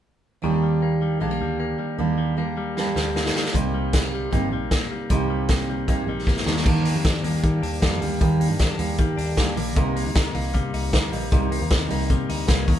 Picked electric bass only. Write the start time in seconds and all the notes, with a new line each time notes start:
0.44 D#2
1.21 A#1
1.41 D2
1.99 D#2
2.96 D2
3.54 C2
4.32 G1
4.52 A#1
5.10 C2
6.07 A#1
6.46 D#2
6.66 D#2
6.94 F2
7.23 D#2
7.44 D#3
7.62 D#2
7.83 F2
8.01 D2
8.21 D#2
8.49 G2
8.79 D#2
8.99 D#3
9.18 D#2
9.38 D2
9.57 A#1
9.76 C2
10.05 D2
10.35 C2
10.54 C3
10.73 C2
10.93 D2
11.12 A#1
11.32 C2
11.61 D#2
11.91 C2
12.10 C3
12.30 D2
12.49 C2
12.68 D#2